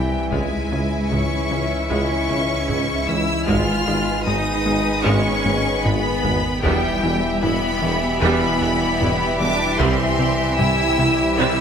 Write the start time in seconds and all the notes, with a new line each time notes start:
Already playing: C2 C3 E3 G3 C4 E4 G4 E5 G5
0.32 C#2 G#2 C#3 E3 G#3 C#4 E4 E5 G#5, taiko
0.72 C#2 C#3 G#3 C#4
1.11 C#2 C#3 G#3 C#4 E4 C#6, taiko low-mid
1.50 C#2 C#3 G#3 C#4
1.90 C#2 C#3 G#3 C#4 C#6
2.29 C#2 G#3 C#4
2.68 C#2 G#3 C#4 E4, taiko low-mid
3.07 C#2 E3 G#3 C#4 E4 E6
3.47 G#1 G#2 D#3 G#3 B3 D#4 F4 G#4 B4 F6, taiko
3.87 G#1 G#3 B3 D#4
4.26 G#1 G#3 D#4 D#6, taiko low-mid
4.66 G#1 G#3 B3 D#4
5.05 G#1 G#2 G#3 C#4 C#6
5.45 G#1 G#2 G#3 B3 G#4, taiko high
5.84 G#1 G#2 G#3 B3 D#4 G#4 B5, taiko low-mid
6.24 G#1 G#2 G#3 B3, taiko low
6.63 E1 E2 B2 E3 G3 B3 E4 G4 E5 G5, taiko
7.02 E1 E2 E3 B3
7.42 E1 E2 E3 B3 E4 B5, taiko low-mid
7.82 E1 E2 E3 B3
8.21 E1 E2 E3 G3 B3 B5
8.61 E1 E2 B3 E4
9.01 E1 E2 B3 E4, taiko low-mid
9.40 E1 E2 G3 B3 D4 D6
9.79 C2 C3 G3 C4 C6, taiko
10.19 C2 C3 G3 C4
10.58 C2 C3 G3 C4 E4 E6, taiko low-mid
10.98 C2 C3 G3 C4
11.37 C2 C3 G3 C4 E4 E6